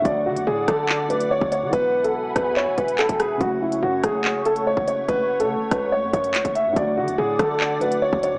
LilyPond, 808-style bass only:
\new Staff \with { instrumentName = "808-style bass" } { \clef bass \time 4/4 \key fis \minor \tempo 4 = 143 d,8 d16 d,16 a,8 d4 r8. d,8 d16 | e,,4. e,8. d,,16 e,,8. e,,8. | fis,,4 fis,8 fis,,4.~ fis,,16 fis,,8. | fis,,8. cis16. fis,,16. cis,8. fis,16 fis,8 cis,16 fis,,8 a,16 |
d,8 d16 d,16 a,8 d4 r8. d,8 d16 | }